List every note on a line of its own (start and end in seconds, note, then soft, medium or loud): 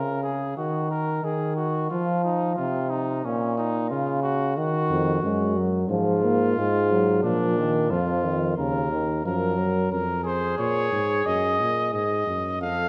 0.00 0.57 C#3 medium
0.00 0.22 A#4 medium
0.23 0.56 G#4 medium
0.57 1.22 D#3 medium
0.57 0.90 F#4 medium
0.91 1.26 A#4 medium
1.23 1.89 D#3 medium
1.23 1.56 G#4 medium
1.57 1.89 F#4 medium
1.90 2.56 F3 loud
1.90 2.23 F4 medium
2.24 2.55 D#4 medium
2.56 3.24 C3 medium
2.56 2.91 F4 medium
2.90 3.26 D#4 medium
3.25 3.93 A#2 medium
3.25 3.57 C#4 medium
3.57 3.90 D#4 medium
3.90 4.59 C#3 medium
3.90 4.22 F4 medium
4.23 4.56 F#4 medium
4.56 5.23 D#3 medium
4.56 5.60 F#4 medium
4.90 5.21 F2 medium
5.23 5.89 F#2 medium
5.23 5.58 G#3 medium
5.57 5.90 F#3 medium
5.89 6.56 G#2 medium
5.89 6.23 F3 medium
5.89 7.19 F4 medium
6.23 6.60 A#3 medium
6.57 7.23 G#2 medium
6.57 6.91 G#3 medium
6.92 7.27 F#3 medium
7.23 7.92 A#2 medium
7.23 7.57 F3 medium
7.23 7.92 D4 medium
7.58 7.90 D#3 medium
7.90 8.57 F2 medium
7.90 8.26 F3 medium
7.90 8.57 F4 medium
8.24 8.57 D#3 medium
8.58 9.24 D#2 medium
8.58 8.91 C#3 medium
8.58 9.24 A#4 medium
8.92 9.25 D#3 medium
9.25 9.91 F#2 medium
9.25 9.60 F3 medium
9.25 9.91 A#4 medium
9.58 9.92 F#3 medium
9.92 10.58 F2 medium
9.92 10.24 A#4 medium
10.24 12.28 G#4 medium
10.24 10.57 C5 medium
10.59 10.92 A#2 medium
10.59 11.28 C#5 medium
10.92 11.25 G#2 medium
11.26 11.62 F#2 medium
11.26 11.93 D#5 medium
11.60 11.95 A#2 medium
11.93 12.27 G#2 medium
11.93 12.59 D#5 medium
12.27 12.62 F#2 medium
12.60 12.89 F2 medium
12.60 12.89 A4 medium
12.60 12.89 F5 medium